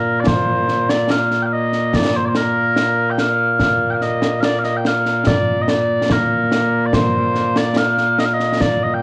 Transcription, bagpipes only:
Already playing: A#2 A#3 A#4
0.20 D5
0.27 C5
0.90 D5
1.11 F5
1.42 F5 G5
1.53 D#5
1.95 D5
2.16 C5
2.25 C5 D5
2.37 A#4
3.11 G5
3.19 F5
3.90 F5 G5
4.02 D#5
4.41 D5 F5
4.59 F5
4.64 D#5
4.77 G5
4.87 F5
5.27 D5
5.61 D#5
5.69 D5
6.12 A#4
6.86 D5
6.94 C5
7.57 D5
7.77 F5
8.19 D#5
8.25 F5
8.34 D#5
8.61 D5
8.83 D#5
8.94 G5

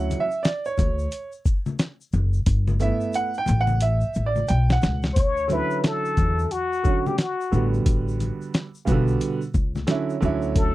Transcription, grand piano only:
Already playing: F#3 C#4 E4 F#5
0.20 E5
0.43 D5
0.66 C#5
2.80 A3 B3 E4 E5
3.15 F#5
3.38 G5
3.61 F#5
3.82 E5
4.26 D5
4.48 G5
4.72 F#5
5.48 D3 F#3 C#4
5.52 E4
6.83 D3 F#3 C#4
6.87 F#4
7.52 D3 G3 B3 F#4
8.85 C#3 G3 B3 F#4
8.92 D3
9.87 D3 F#3 C#4 E4
10.21 D3 F#3 C#4
10.25 E4

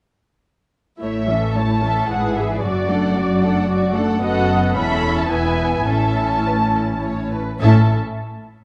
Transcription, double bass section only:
1.01 A1
2.10 G#1
2.64 F#1
4.22 F#1
4.75 E1
5.30 E1
5.87 A1
7.62 A1

